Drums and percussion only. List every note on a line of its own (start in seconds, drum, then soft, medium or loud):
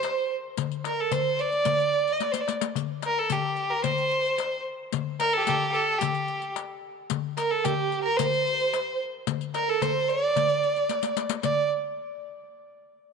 0.03 riq soft
0.03 darbuka tek medium
0.57 riq medium
0.57 darbuka dum medium
0.71 riq soft
0.71 darbuka ka soft
0.84 riq soft
0.84 darbuka tek medium
1.12 riq medium
1.12 darbuka dum medium
1.39 riq soft
1.39 darbuka ka soft
1.52 riq soft
1.52 darbuka ka soft
1.65 riq medium
1.65 darbuka dum medium
1.80 riq soft
1.80 darbuka ka soft
2.07 riq soft
2.07 darbuka ka soft
2.20 riq medium
2.20 darbuka tek medium
2.34 riq medium
2.34 darbuka ka medium
2.48 riq medium
2.48 darbuka tek medium
2.61 riq medium
2.61 darbuka ka medium
2.75 riq medium
2.75 darbuka dum medium
3.02 riq soft
3.02 darbuka tek medium
3.30 riq medium
3.30 darbuka dum medium
3.57 riq soft
3.84 riq medium
3.84 darbuka dum medium
3.98 riq soft
4.11 riq soft
4.25 riq soft
4.38 riq soft
4.38 darbuka tek medium
4.92 riq medium
4.92 darbuka dum medium
5.20 riq medium
5.20 darbuka tek medium
5.47 riq medium
5.47 darbuka dum medium
5.74 riq soft
6.01 riq medium
6.01 darbuka dum medium
6.14 riq soft
6.28 riq soft
6.28 darbuka ka soft
6.42 riq soft
6.56 riq soft
6.56 darbuka tek medium
7.10 riq medium
7.10 darbuka dum medium
7.37 riq soft
7.37 darbuka tek medium
7.65 riq medium
7.65 darbuka dum medium
7.92 riq soft
8.19 riq medium
8.19 darbuka dum medium
8.33 riq soft
8.46 riq soft
8.46 darbuka ka soft
8.60 riq soft
8.73 riq soft
8.73 darbuka tek medium
9.27 riq medium
9.27 darbuka dum medium
9.41 riq soft
9.54 riq soft
9.54 darbuka tek medium
9.82 riq medium
9.82 darbuka dum medium
10.09 riq soft
10.09 darbuka ka soft
10.36 riq medium
10.36 darbuka dum medium
10.50 riq soft
10.63 riq soft
10.63 darbuka ka soft
10.76 riq soft
10.76 darbuka ka soft
10.89 riq medium
10.89 darbuka tek medium
11.03 riq medium
11.03 darbuka ka medium
11.17 riq medium
11.17 darbuka tek medium
11.29 riq medium
11.29 darbuka ka medium
11.43 riq medium
11.43 darbuka dum medium